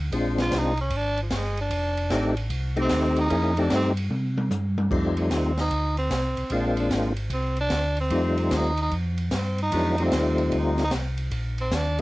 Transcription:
Already playing: tonewheel organ D2
0.12 tonewheel organ A#1 G#3 C4 D4 F4, kick, ride
0.38 tenor saxophone F4, snare, ride
0.51 tonewheel organ C2, kick, snare, hi-hat pedal, ride
0.58 tenor saxophone D#4
0.77 tenor saxophone C#4, ride
0.90 tonewheel organ G#1, kick, ride
0.96 tenor saxophone D4
1.17 ride
1.22 tenor saxophone F3
1.30 tonewheel organ G1, kick, snare, hi-hat pedal, ride
1.36 tenor saxophone G#3
1.57 tenor saxophone D4, ride
1.70 tonewheel organ F1, kick, ride
1.97 ride
2.10 tonewheel organ A1 A3 C4 D#4 G4, kick, snare, hi-hat pedal, ride
2.37 ride
2.50 tonewheel organ C2, kick, ride
2.76 tonewheel organ A3 C4 D#4 G4, ride
2.81 tenor saxophone C4
2.89 tonewheel organ D#2, kick, snare, hi-hat pedal, ride
3.16 ride
3.20 tenor saxophone D#4
3.30 tonewheel organ F2 A#3 C#4 E4 G#4, kick, ride
3.57 tonewheel organ A3 C4 D#4 G4, tenor saxophone D4, ride
3.70 tonewheel organ G2, kick, snare, hi-hat pedal, ride
3.75 tenor saxophone C4
3.97 ride
4.10 tonewheel organ C3, high tom
4.38 high tom
4.51 tonewheel organ G2, hi-hat pedal, high tom
4.78 high tom
4.91 tonewheel organ F2 G3 A3 C4 D#4 F4, kick, crash
5.17 ride
5.31 tonewheel organ D#2, kick, snare, hi-hat pedal, ride
5.36 tenor saxophone C4
5.57 tenor saxophone D#4, snare, ride
5.70 tonewheel organ D2, kick, ride
5.97 tenor saxophone C4, ride
6.10 tonewheel organ C2, kick, snare, hi-hat pedal, ride
6.37 tonewheel organ C2, ride
6.50 tonewheel organ A#1 G#3 A#3 C4 D4 F4, kick, ride
6.54 tenor saxophone D4
6.77 tenor saxophone D4, ride
6.90 tonewheel organ G#1, kick, snare, hi-hat pedal, ride
7.16 ride
7.30 tonewheel organ C2, tenor saxophone C4, kick, ride
7.56 ride
7.61 tenor saxophone D4
7.70 tonewheel organ D2, kick, snare, hi-hat pedal, ride
7.96 ride
8.01 tenor saxophone C4
8.10 tonewheel organ F2 G3 A3 C4 D#4 F4, kick, ride
8.37 ride
8.50 tonewheel organ D#2, kick, snare, hi-hat pedal, ride
8.56 tenor saxophone D#4
8.77 ride
8.81 tenor saxophone D#4
8.91 tonewheel organ F2, kick, ride
9.18 ride
9.31 tonewheel organ G2, kick, snare, hi-hat pedal, ride
9.37 tenor saxophone C4
9.58 ride
9.62 tenor saxophone D#4
9.72 tonewheel organ F2 F#3 G#3 B3 D4 E4, kick, ride
9.98 tonewheel organ G3 A3 C4 D#4 F4, ride
10.04 tenor saxophone C4
10.12 tonewheel organ D#2, kick, snare, hi-hat pedal, ride
10.38 ride
10.52 tonewheel organ D2, kick, ride
10.58 tenor saxophone D#4
10.78 snare, ride
10.84 tenor saxophone D#4
10.91 tonewheel organ C2, kick, snare, hi-hat pedal, ride
11.18 ride
11.32 tonewheel organ A#1, kick, ride
11.58 tenor saxophone C4, ride
11.71 tonewheel organ D#2, tenor saxophone D4, kick, snare, hi-hat pedal, ride

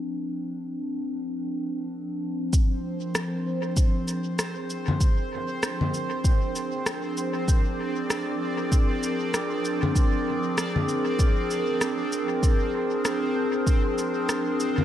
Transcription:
Already playing: ambient pad F3 C4 D4 G#4 A#4
2.53 ambient pad F3, synth texture C4 C5, kick, shaker
2.86 ambient pad C4 A#4
3.02 ambient pad D4
3.15 cross-stick, shaker
3.77 kick, shaker
3.83 ambient pad G#4
4.08 shaker
4.39 cross-stick, shaker
4.70 shaker
4.88 low conga
5.01 kick, shaker
5.63 cross-stick, shaker
5.81 low conga
5.94 shaker
6.24 kick, shaker
6.56 shaker
6.86 cross-stick, shaker
7.17 shaker
7.48 synth texture D5, kick, shaker
8.10 cross-stick, shaker
8.72 kick, shaker
9.03 shaker
9.34 cross-stick, shaker
9.65 shaker
9.83 low conga
9.95 kick, shaker
10.58 cross-stick, shaker
10.76 low conga
10.89 shaker
11.19 kick, shaker
11.50 shaker
11.81 cross-stick, shaker
12.12 shaker
12.43 synth texture C5, kick, shaker
13.05 cross-stick, shaker
13.67 kick, shaker
13.98 shaker
14.29 cross-stick, shaker
14.60 shaker
14.78 low conga

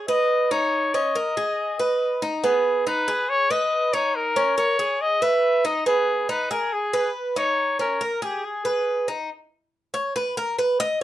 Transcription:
0.08 cuban tres B4, trumpet D#5
0.51 cuban tres D#4, trumpet C#5
0.94 cuban tres C#4, trumpet D#5
1.15 cuban tres A#4
1.37 cuban tres G#4
1.79 cuban tres B4
2.22 cuban tres D#4
2.44 cuban tres B3, trumpet G#4
2.87 cuban tres D#4, trumpet B4
3.08 cuban tres G#4
3.30 trumpet C#5
3.51 cuban tres B4, trumpet D#5
3.93 cuban tres D#4, trumpet C#5
4.15 trumpet A#4
4.36 cuban tres C#4
4.58 cuban tres A#4, trumpet C#5
4.79 cuban tres G#4
5.01 trumpet D#5
5.22 cuban tres B4, trumpet E5
5.65 cuban tres D#4, trumpet D#5
5.86 cuban tres B3, trumpet G#4
6.29 cuban tres D#4, trumpet B4
6.51 cuban tres G#4, trumpet A#4
6.73 trumpet G#4
6.93 cuban tres B4
7.36 cuban tres D#4, trumpet C#5
7.79 cuban tres C#4, trumpet A#4
8.01 cuban tres A#4
8.22 trumpet G4, cuban tres G#4
8.45 trumpet G#4
8.65 cuban tres B4
9.08 cuban tres D#4
9.94 cuban tres C#5
10.16 cuban tres B4
10.37 cuban tres A#4
10.59 cuban tres B4
10.80 cuban tres D#5

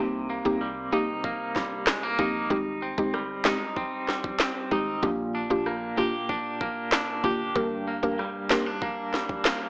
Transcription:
Already playing: 808-style bass C2, clean electric guitar G3 A#3 G4, synth pluck A#3 C4 D#4
0.00 clean electric guitar C3, synth pluck G4
0.29 clean electric guitar A#3
0.45 808-style bass C2, synth pluck A#3 C4 D#4 G4
0.61 clean electric guitar G3
0.92 synth pluck A#3 C4 D#4 G4, clean electric guitar D#4
1.24 clean electric guitar A#3, kick
1.56 clean electric guitar G3, kick, snare
1.87 clean electric guitar G#3, cross-stick, snare, clap
2.03 clean electric guitar A#3
2.19 808-style bass A#1, synth pluck A#3 C4 D#4 G4, clean electric guitar D#4, kick
2.50 808-style bass G#1, synth pluck G#3 C4 D#4 G4, kick
2.82 clean electric guitar C4
2.98 808-style bass G1, synth pluck G#3 C4 D#4 G4, kick
3.13 clean electric guitar G3, cross-stick
3.45 synth pluck G#3 C4 D#4 G4, clean electric guitar D#4, snare, clap
3.77 clean electric guitar C4, kick
4.08 clean electric guitar G3, snare
4.24 kick
4.39 clean electric guitar C4, snare, clap
4.71 808-style bass G#1, synth pluck G#3 C4 D#4 G4, clean electric guitar D#4, kick
5.03 808-style bass A#1, clean electric guitar A#2, synth pluck A#3 D4 F4 G4, kick
5.35 clean electric guitar D4
5.50 808-style bass A#1, synth pluck A#3 D4 F4 G4
5.66 clean electric guitar A#3, cross-stick
5.97 synth pluck A#3 D4 F4 G4, clean electric guitar G4
6.29 clean electric guitar D4, kick
6.61 clean electric guitar A#3, kick
6.92 clean electric guitar D4, snare, clap
7.24 808-style bass G1, synth pluck A#3 D4 F4 G4, clean electric guitar G4, kick
7.56 808-style bass G1, clean electric guitar G2, synth pluck A#3 D4 G4 A#4, kick
7.87 clean electric guitar A#3
8.03 808-style bass F1, synth pluck A#3 D4 G4 A#4, kick
8.19 clean electric guitar G3, cross-stick
8.50 synth pluck A#3 D4 G4 A#4, clean electric guitar C4, snare, clap
8.66 clean electric guitar D4
8.82 clean electric guitar A#3, kick
9.14 clean electric guitar G3, snare
9.29 kick
9.45 clean electric guitar A#3, snare, clap

